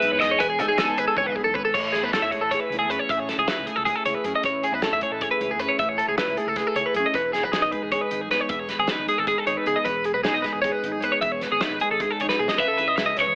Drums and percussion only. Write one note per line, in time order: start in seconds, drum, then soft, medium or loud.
0.02 closed hi-hat medium
0.22 snare soft
0.22 closed hi-hat medium
0.40 kick loud
0.40 closed hi-hat loud
0.59 closed hi-hat medium
0.78 snare loud
0.78 closed hi-hat loud
0.98 closed hi-hat medium
1.17 kick loud
1.17 high tom medium
1.36 kick medium
1.55 kick loud
1.74 kick medium
1.74 crash medium
1.94 snare soft
1.94 closed hi-hat medium
2.13 snare loud
2.13 closed hi-hat medium
2.32 kick medium
2.32 closed hi-hat medium
2.51 kick medium
2.51 closed hi-hat medium
2.72 closed hi-hat medium
2.91 closed hi-hat medium
3.09 kick loud
3.09 closed hi-hat medium
3.29 snare soft
3.29 closed hi-hat medium
3.48 snare loud
3.48 closed hi-hat medium
3.67 closed hi-hat medium
3.86 kick loud
3.86 closed hi-hat medium
4.05 closed hi-hat medium
4.24 closed hi-hat medium
4.43 kick loud
4.43 closed hi-hat medium
4.63 closed hi-hat medium
4.82 snare loud
4.82 closed hi-hat medium
5.01 kick medium
5.01 closed hi-hat medium
5.21 kick loud
5.21 closed hi-hat medium
5.41 closed hi-hat medium
5.59 closed hi-hat medium
5.79 kick loud
5.79 closed hi-hat medium
5.99 closed hi-hat medium
6.18 snare loud
6.18 closed hi-hat medium
6.37 closed hi-hat soft
6.56 kick loud
6.56 snare soft
6.56 closed hi-hat medium
6.76 closed hi-hat medium
6.94 closed hi-hat medium
7.14 kick loud
7.14 closed hi-hat medium
7.34 snare soft
7.34 closed hi-hat medium
7.53 snare loud
7.53 closed hi-hat medium
7.72 kick medium
7.72 closed hi-hat medium
7.92 kick medium
7.92 closed hi-hat medium
8.11 closed hi-hat medium
8.31 snare soft
8.31 closed hi-hat medium
8.49 kick loud
8.49 closed hi-hat medium
8.69 snare soft
8.69 closed hi-hat medium
8.87 snare loud
8.87 closed hi-hat medium
9.08 closed hi-hat medium
9.27 kick loud
9.27 closed hi-hat medium
9.47 closed hi-hat medium
9.66 closed hi-hat medium
9.85 kick loud
9.85 closed hi-hat medium
10.04 closed hi-hat medium
10.24 snare loud
10.24 closed hi-hat medium
10.44 kick medium
10.44 snare soft
10.44 closed hi-hat medium
10.64 kick medium
10.64 closed hi-hat medium
10.84 closed hi-hat medium
11.02 closed hi-hat medium
11.22 kick loud
11.22 closed hi-hat medium
11.41 snare soft
11.41 closed hi-hat medium
11.61 snare loud
11.61 closed hi-hat medium
11.80 closed hi-hat medium
12.00 kick loud
12.00 closed hi-hat medium
12.20 closed hi-hat medium
12.29 snare medium
12.48 snare medium
12.58 kick medium
12.58 closed hi-hat medium
12.78 closed hi-hat soft
12.98 snare medium
12.98 closed hi-hat medium
13.16 snare soft
13.16 closed hi-hat soft